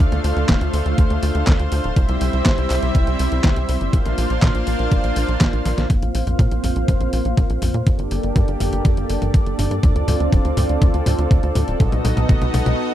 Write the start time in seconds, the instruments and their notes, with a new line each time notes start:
Already playing: analog synth pad A3 D4 F4 F5
0.00 analog synth pad C5
0.12 analog synth bass D2, snare, closed hi-hat
0.24 analog synth bass D2, open hi-hat
0.36 analog synth bass D2, closed hi-hat
0.49 analog synth bass D1, kick, snare, clap, closed hi-hat
0.61 analog synth bass D2, closed hi-hat
0.73 analog synth bass D2, open hi-hat
0.86 analog synth bass D2, closed hi-hat
0.98 analog synth bass D2, kick, closed hi-hat
1.10 analog synth bass D2, closed hi-hat
1.23 analog synth bass D2, open hi-hat
1.35 analog synth bass D2, closed hi-hat
1.47 analog synth bass D2, kick, snare, clap, closed hi-hat
1.59 analog synth bass D2, closed hi-hat
1.72 analog synth bass D2, open hi-hat
1.84 analog synth bass D1, closed hi-hat
1.96 analog synth bass C2, analog synth pad G3 C4 E4 E5, kick, closed hi-hat
2.09 analog synth bass C2, closed hi-hat
2.21 analog synth bass C2, open hi-hat
2.33 analog synth bass C2, closed hi-hat
2.46 analog synth bass G1, kick, snare, clap, closed hi-hat
2.58 analog synth bass C2, closed hi-hat
2.70 analog synth bass C2, clap, open hi-hat
2.83 analog synth bass C2, closed hi-hat
2.95 analog synth bass C2, kick, closed hi-hat
3.07 analog synth bass C2, closed hi-hat
3.19 analog synth bass C2, open hi-hat
3.32 analog synth bass C2, closed hi-hat
3.44 analog synth bass C2, kick, snare, clap, closed hi-hat
3.56 analog synth bass C2, closed hi-hat
3.69 analog synth bass C2, open hi-hat
3.81 analog synth bass G1, closed hi-hat
3.93 analog synth bass A#1, analog synth pad A#3 D4 F4 C5 F5, kick, closed hi-hat
4.06 analog synth bass A#1, snare, closed hi-hat
4.18 analog synth bass A#1, open hi-hat
4.30 analog synth bass A#1, closed hi-hat
4.42 analog synth bass A#2, kick, snare, clap, closed hi-hat
4.55 analog synth bass A#1, closed hi-hat
4.67 analog synth bass A#1, open hi-hat
4.79 analog synth bass A#1, closed hi-hat
4.92 analog synth bass A#1, kick, closed hi-hat
5.04 analog synth bass A#1, closed hi-hat
5.16 analog synth bass A#1, open hi-hat
5.28 analog synth bass A#1, closed hi-hat
5.41 analog synth bass A#1, kick, snare, clap, closed hi-hat
5.53 analog synth bass A#1, closed hi-hat
5.65 analog synth bass A#1, snare, open hi-hat
5.78 analog synth bass A#1, snare, closed hi-hat
5.90 analog synth bass A#1, analog synth pad A#3 C4 F4 C5 F5, kick, closed hi-hat, mid tom
6.02 analog synth bass A#1, closed hi-hat
6.14 analog synth bass A#1, open hi-hat
6.27 analog synth bass A#1, closed hi-hat, mid tom
6.39 analog synth bass A#2, kick, closed hi-hat
6.51 analog synth bass A#1, closed hi-hat
6.64 analog synth bass A#1, open hi-hat, mid tom
6.76 analog synth bass A#1, closed hi-hat
6.88 analog synth bass A#1, kick, closed hi-hat, mid tom
7.00 analog synth bass A#1, closed hi-hat
7.13 analog synth bass A#1, open hi-hat
7.25 analog synth bass A#1, closed hi-hat
7.37 analog synth bass A#1, kick, closed hi-hat
7.50 analog synth bass A#1, closed hi-hat
7.62 analog synth bass A#1, open hi-hat, mid tom
7.74 analog synth bass A#2, closed hi-hat
7.86 analog synth bass G1, analog synth pad A#3 D4 G4 A4 D5, kick, closed hi-hat, mid tom
7.99 analog synth bass G1, closed hi-hat
8.11 analog synth bass G1, open hi-hat
8.23 analog synth bass G1, closed hi-hat
8.36 analog synth bass G2, kick, closed hi-hat
8.48 analog synth bass G1, closed hi-hat
8.60 analog synth bass G1, open hi-hat, mid tom
8.73 analog synth bass G1, closed hi-hat
8.85 analog synth bass G1, kick, closed hi-hat, mid tom
8.97 analog synth bass G1, closed hi-hat
9.09 analog synth bass G1, open hi-hat
9.22 analog synth bass G1, closed hi-hat, mid tom
9.34 analog synth bass G1, kick, closed hi-hat
9.46 analog synth bass G1, closed hi-hat
9.58 analog synth bass G1, open hi-hat, mid tom
9.71 analog synth bass G2, closed hi-hat
9.83 analog synth bass D2, analog synth pad C4 F4, kick, closed hi-hat, mid tom
9.95 analog synth bass D2, closed hi-hat
10.08 analog synth bass D2, open hi-hat, mid tom
10.20 analog synth bass D2, closed hi-hat
10.32 analog synth bass D1, kick, closed hi-hat, mid tom
10.45 analog synth bass D2, closed hi-hat
10.57 analog synth bass D2, open hi-hat, mid tom
10.69 analog synth bass D2, closed hi-hat
10.82 analog synth bass D2, kick, closed hi-hat, mid tom
10.94 analog synth bass D2, closed hi-hat
11.06 analog synth bass D2, open hi-hat, mid tom
11.19 analog synth bass D2, closed hi-hat
11.31 analog synth bass D2, kick, closed hi-hat, mid tom
11.43 analog synth bass D2, closed hi-hat
11.55 analog synth bass D2, open hi-hat, mid tom
11.68 analog synth bass D1, closed hi-hat
11.80 analog synth bass B1, analog synth pad B3 D#4 F#4 D#5, kick, closed hi-hat, mid tom
11.92 analog synth bass B1, closed hi-hat, mid tom
12.05 analog synth bass B1, open hi-hat, mid tom
12.17 analog synth bass B1, closed hi-hat, mid tom
12.29 analog synth bass F#1, kick, closed hi-hat, mid tom
12.42 analog synth bass B1, closed hi-hat, mid tom
12.54 analog synth bass B1, open hi-hat, mid tom
12.66 analog synth bass B1, closed hi-hat, mid tom